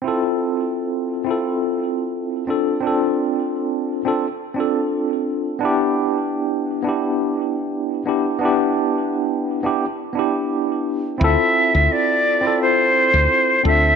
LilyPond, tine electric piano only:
\new Staff \with { instrumentName = "Tine electric piano" } { \time 4/4 \key d \dorian \tempo 4 = 86 <c' e' f' a'>4.~ <c' e' f' a'>16 <c' e' f' a'>4.~ <c' e' f' a'>16 <c' d' f' a'>8 | <c' d' f' a'>4.~ <c' d' f' a'>16 <c' d' f' a'>16 r8 <c' d' f' a'>4. | <b d' e' g'>4.~ <b d' e' g'>16 <b d' e' g'>4.~ <b d' e' g'>16 <b d' e' g'>8 | <b d' e' g'>4.~ <b d' e' g'>16 <b d' e' g'>16 r8 <b d' e' g'>4. |
<c' e' f' a'>4.~ <c' e' f' a'>16 <c' e' f' a'>4.~ <c' e' f' a'>16 <c' d' f' a'>8 | }